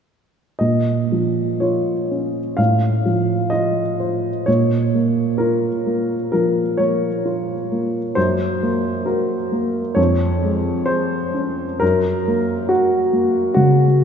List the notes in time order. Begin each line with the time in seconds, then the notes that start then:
0.59 A#2 D#5
1.12 F3
1.60 F4 C#5
2.11 C#4
2.57 A2 F5
3.05 F3
3.50 F4 D#5
4.00 C5
4.46 A#2 C#5
4.95 A#3
5.38 F4 A#4
5.86 A#3
6.32 F3 A#4
6.77 A#3 C#5
7.25 F4
7.72 A#3
8.15 F#2 C5
8.63 A#3
9.06 F#4 A#4
9.52 A#3
9.95 F2 C#5
10.42 G#3
10.86 G#4 C5
11.34 C#4
11.80 F#2 A#4
12.28 A#3
12.69 F#4
13.13 A#3
13.54 C#3 F#4